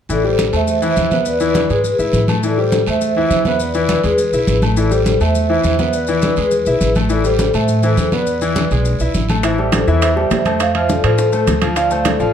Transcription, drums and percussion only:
0.09 high conga, long guiro, maracas
0.25 high conga
0.38 high conga, short guiro, maracas
0.53 high conga, short guiro, maracas
0.67 high conga, long guiro, maracas
0.82 high conga, maracas
0.96 high conga, short guiro, maracas
1.11 high conga, short guiro, maracas
1.25 high conga, long guiro, maracas
1.40 high conga, maracas
1.55 high conga, short guiro, maracas
1.69 high conga, short guiro, maracas
1.84 high conga, long guiro, maracas
1.99 high conga, maracas
2.13 high conga, short guiro, maracas
2.28 high conga, short guiro, maracas
2.43 high conga, long guiro, maracas
2.58 high conga
2.72 high conga, short guiro, maracas
2.86 high conga, short guiro, maracas
3.01 high conga, long guiro, maracas
3.16 high conga
3.31 high conga, short guiro, maracas
3.45 high conga, short guiro, maracas
3.60 high conga, long guiro, maracas
3.74 high conga, maracas
3.89 high conga, short guiro, maracas
4.03 high conga, short guiro, maracas
4.18 high conga, long guiro, maracas
4.33 high conga, maracas
4.47 high conga, short guiro, maracas
4.62 high conga, short guiro, maracas
4.76 high conga, long guiro, maracas
4.91 high conga, maracas
5.06 high conga, short guiro, maracas
5.20 high conga, short guiro, maracas
5.35 high conga, long guiro, maracas
5.50 high conga
5.64 high conga, short guiro, maracas
5.79 high conga, short guiro, maracas
5.93 high conga, long guiro, maracas
6.07 high conga, maracas
6.22 high conga, short guiro, maracas
6.36 high conga, short guiro, maracas
6.51 high conga, long guiro, maracas
6.66 high conga, maracas
6.81 high conga, short guiro, maracas
6.95 high conga, short guiro, maracas
7.09 high conga, long guiro, maracas
7.24 high conga, maracas
7.39 high conga, short guiro, maracas
7.54 high conga, short guiro, maracas
7.68 high conga, long guiro, maracas
7.83 high conga, maracas
7.97 high conga, short guiro, maracas
8.12 high conga, short guiro, maracas
8.27 high conga, long guiro, maracas
8.41 high conga, maracas
8.56 high conga, short guiro, maracas
8.71 high conga, short guiro, maracas
8.85 high conga, long guiro, maracas
9.00 high conga, maracas
9.14 high conga, short guiro, maracas
9.29 high conga, short guiro, maracas
9.43 high bongo, high conga, high timbale, maracas
9.58 high bongo, high conga
9.72 high bongo, high conga, high timbale, maracas
9.88 high bongo, high conga, maracas
10.02 high bongo, high conga, high timbale, maracas
10.17 high bongo, high conga
10.31 high bongo, low bongo, high conga, high timbale, low timbale, maracas
10.46 high conga, high timbale, maracas
10.60 high bongo, high conga, high timbale, maracas
10.75 high bongo, high conga, high timbale
10.89 high bongo, high conga, maracas
11.04 high bongo, high timbale, maracas
11.18 high bongo, high conga, maracas
11.32 high bongo, high conga, maracas
11.47 high bongo, low bongo, high conga, high timbale, maracas
11.62 high conga, high timbale, maracas
11.76 high bongo, high conga, high timbale, maracas
11.91 high bongo, high conga, maracas
12.05 high bongo, high conga, high timbale, maracas
12.20 high bongo, high conga, maracas

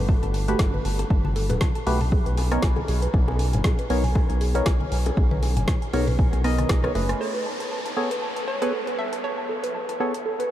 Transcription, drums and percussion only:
0.09 kick, high bongo
0.23 closed hi-hat
0.34 open hi-hat
0.48 closed hi-hat
0.59 kick, snare, high bongo
0.74 high conga
0.85 open hi-hat
0.99 closed hi-hat, high bongo
1.10 kick
1.25 high conga
1.36 open hi-hat
1.50 closed hi-hat, high bongo, low conga
1.61 kick, snare, high conga
1.75 closed hi-hat
1.87 open hi-hat, high bongo
2.01 open hi-hat, low conga
2.12 kick
2.26 closed hi-hat
2.37 open hi-hat, high bongo
2.52 cross-stick, closed hi-hat
2.62 kick, snare
2.76 high bongo, high conga
2.88 open hi-hat
3.02 closed hi-hat
3.14 kick
3.28 high bongo
3.39 open hi-hat
3.53 closed hi-hat, low conga
3.64 kick, snare, high bongo
3.79 closed hi-hat
3.90 open hi-hat
4.04 open hi-hat, low conga
4.16 kick, high bongo
4.30 closed hi-hat
4.41 open hi-hat
4.54 closed hi-hat, high bongo
4.66 kick, snare
4.81 high conga
4.92 open hi-hat
5.06 closed hi-hat, high bongo
5.17 kick
5.31 high conga
5.43 open hi-hat, high bongo
5.57 closed hi-hat, low conga
5.68 kick, snare, high conga
5.82 closed hi-hat
5.93 open hi-hat, high bongo
6.08 open hi-hat, low conga
6.19 kick
6.33 closed hi-hat, high bongo
6.44 cross-stick, open hi-hat
6.58 cross-stick, closed hi-hat, high conga
6.69 kick, cross-stick, snare
6.84 cross-stick, closed hi-hat, high bongo, high conga
6.95 open hi-hat
7.09 cross-stick, closed hi-hat
7.60 closed hi-hat
7.86 closed hi-hat
8.11 closed hi-hat
8.37 closed hi-hat
8.62 closed hi-hat
8.87 closed hi-hat
9.13 closed hi-hat
9.64 closed hi-hat
9.89 closed hi-hat
10.14 closed hi-hat
10.40 closed hi-hat

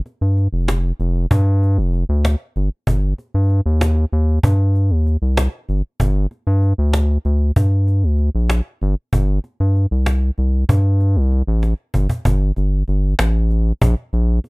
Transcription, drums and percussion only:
0.06 cajon slap
0.37 cajon slap
0.68 cajon slap
1.00 cajon slap
1.31 cajon bass
1.62 cajon slap
1.94 cajon slap
2.25 cajon slap
2.56 cajon slap
2.87 cajon bass
3.18 cajon slap
3.50 cajon slap
3.81 cajon slap
4.12 cajon slap
4.43 cajon bass
4.75 cajon slap
5.06 cajon slap
5.37 cajon slap
5.69 cajon slap
6.00 cajon bass
6.31 cajon slap
6.62 cajon slap
6.93 cajon slap
7.25 cajon slap
7.56 cajon bass
7.87 cajon slap
8.19 cajon slap
8.50 cajon slap
8.81 cajon slap
9.13 cajon bass
9.44 cajon slap
9.75 cajon slap
10.06 cajon slap
10.38 cajon slap
10.69 cajon bass
11.00 cajon slap
11.31 cajon slap
11.63 cajon slap
11.94 cajon bass
12.09 cajon bass
12.25 cajon bass
12.56 cajon slap
12.88 cajon slap
13.19 cajon slap
13.51 cajon slap
13.82 cajon bass
14.13 cajon slap
14.44 cajon slap

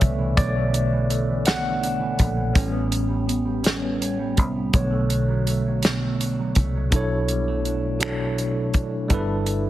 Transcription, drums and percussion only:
0.01 kick, closed hi-hat
0.37 kick, closed hi-hat
0.74 closed hi-hat
1.10 closed hi-hat
1.45 snare, closed hi-hat
1.83 closed hi-hat
2.19 kick, closed hi-hat
2.55 kick, closed hi-hat
2.92 closed hi-hat
3.29 closed hi-hat
3.64 snare, closed hi-hat
4.02 closed hi-hat
4.37 kick, closed hi-hat
4.73 kick, closed hi-hat
5.10 closed hi-hat
5.47 closed hi-hat
5.82 snare, closed hi-hat
6.20 closed hi-hat
6.55 kick, closed hi-hat
6.92 kick, closed hi-hat
7.28 closed hi-hat
7.65 closed hi-hat
8.00 finger snap, closed hi-hat
8.38 closed hi-hat
8.73 kick, closed hi-hat
9.10 kick, closed hi-hat
9.46 closed hi-hat

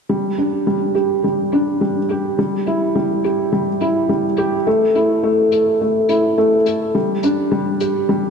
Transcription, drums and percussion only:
0.38 closed hi-hat
0.95 closed hi-hat
1.52 closed hi-hat
2.09 closed hi-hat
2.66 closed hi-hat
3.24 closed hi-hat
3.80 closed hi-hat
4.37 closed hi-hat
4.95 closed hi-hat
5.52 closed hi-hat
6.09 closed hi-hat
6.66 closed hi-hat
7.23 closed hi-hat
7.80 closed hi-hat

